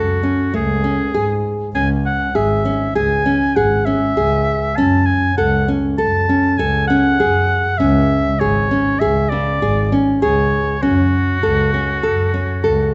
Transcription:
Already playing: double bass F#2, oboe F#4, nylon-string guitar A4
0.23 nylon-string guitar C#4
0.54 double bass C#2, nylon-string guitar A3, oboe G#4
0.84 nylon-string guitar C#4
1.14 double bass G#2, nylon-string guitar G#4
1.75 double bass C#2, nylon-string guitar C#4, oboe G#5
2.06 oboe F#5
2.35 double bass G#1, nylon-string guitar G#4, oboe E5
2.65 nylon-string guitar C#4
2.95 double bass C#2, nylon-string guitar G#4, oboe G#5
3.26 nylon-string guitar C#4
3.56 double bass G#1, nylon-string guitar G#4, oboe F#5
3.85 nylon-string guitar C#4, oboe E5
4.17 double bass C#2, nylon-string guitar G#4
4.76 double bass F#2, nylon-string guitar C#4, oboe A5
5.06 oboe G#5
5.37 double bass C#2, nylon-string guitar A4, oboe F#5
5.68 nylon-string guitar C#4
5.98 double bass F#2, nylon-string guitar A4, oboe A5
6.29 nylon-string guitar C#4
6.58 double bass C#2, nylon-string guitar A4, oboe G#5
6.88 nylon-string guitar C#4, oboe F#5
7.19 double bass F#2, nylon-string guitar G#4
7.78 double bass C#2, nylon-string guitar C#4, oboe E5
8.40 double bass G#1, nylon-string guitar G#4, oboe C#5
8.71 nylon-string guitar C#4
8.99 double bass C#2, nylon-string guitar G#4, oboe E5
9.29 nylon-string guitar C#3, oboe D5
9.62 double bass G#1, nylon-string guitar G#4
9.92 nylon-string guitar C#4
10.21 double bass C#2, nylon-string guitar G#4, oboe C#5
10.82 double bass F#2, nylon-string guitar C#4, oboe F#4
11.43 double bass C#2, nylon-string guitar A4
11.74 nylon-string guitar C#4
12.03 double bass F#2, nylon-string guitar A4
12.34 nylon-string guitar C#4
12.64 double bass C#2, nylon-string guitar A4

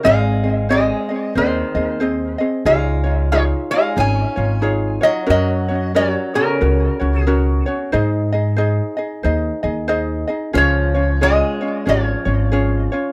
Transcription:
0.03 upright bass G#1, steel-string acoustic guitar G#3, ukulele C4 G#4 C5 D#5, resonator guitar played with a steel bar F5
0.43 ukulele C4 G#4 D#5
0.69 steel-string acoustic guitar G#3, ukulele C4 G#4 C5 D#5, resonator guitar played with a steel bar D#5
1.09 ukulele C4 G#4 D#5
1.35 upright bass D#2, steel-string acoustic guitar D#3, ukulele C4 G#4 C5 D#5, resonator guitar played with a steel bar C5
1.75 upright bass D#2, ukulele C4 G#4 D#5
2.00 ukulele C4 G#4 C5 D#5
2.38 ukulele C4 G#4 D#5
2.65 upright bass C#2, steel-string acoustic guitar G#3, ukulele D#4 F4 G#4 C#5, resonator guitar played with a steel bar F5
3.04 ukulele D#4 F4 C#5
3.32 steel-string acoustic guitar F3, ukulele D#4 F4 G#4 C#5, resonator guitar played with a steel bar C#5
3.71 steel-string acoustic guitar G#3, ukulele D#4 F4 C#5, resonator guitar played with a steel bar F5
3.96 upright bass G#1, steel-string acoustic guitar C#4, ukulele D#4 F4 G#4 C#5
4.00 resonator guitar played with a steel bar G#5
4.36 upright bass G#1, ukulele D#4 F4 C#5
4.62 ukulele D#4 F4 G#4 C#5
5.01 steel-string acoustic guitar F#3, ukulele D#4 F4 C#5, resonator guitar played with a steel bar D#5
5.26 upright bass F#2, steel-string acoustic guitar F#3, ukulele C#4 F#4 A#4 C#5, resonator guitar played with a steel bar D#5
5.68 ukulele C#4 F#4 C#5
5.95 steel-string acoustic guitar F#3, ukulele C#4 F#4 A#4 C#5, resonator guitar played with a steel bar C#5
6.34 steel-string acoustic guitar C#3, ukulele C#4 F#4 C#5, resonator guitar played with a steel bar A#4
6.61 upright bass C#2, ukulele C#4 F#4 A#4 C#5
7.00 upright bass C#2, ukulele C#4 F#4 C#5
7.21 steel-string acoustic guitar B2, resonator guitar played with a steel bar G#4
7.27 ukulele C#4 F#4 A#4 C#5
7.66 ukulele C#4 F#4 C#5
7.92 upright bass G#2, ukulele D#4 G#4 C5 D#5
8.32 ukulele D#4 G#4 D#5
8.56 ukulele D#4 G#4 C5 D#5
8.97 ukulele D#4 G#4 D#5
9.23 upright bass D#2, ukulele D#4 G#4 C5 D#5
9.63 upright bass D#2, ukulele D#4 G#4 D#5
9.88 ukulele D#4 G#4 C5 D#5
10.28 ukulele D#4 G#4 D#5
10.53 upright bass C#2, steel-string acoustic guitar F3, ukulele C#4 F4 G#4 C#5
10.58 resonator guitar played with a steel bar C#5
10.94 ukulele C#4 F4 C#5
11.21 steel-string acoustic guitar G#3, ukulele C#4 F4 G#4 C#5, resonator guitar played with a steel bar D#5
11.61 ukulele C#4 F4 C#5
11.85 upright bass G#1, steel-string acoustic guitar F3, ukulele C#4 F4 G#4 C#5, resonator guitar played with a steel bar C#5
12.25 upright bass G#1, ukulele C#4 F4 C#5
12.52 ukulele C#4 F4 G#4 C#5
12.92 ukulele C#4 F4 C#5

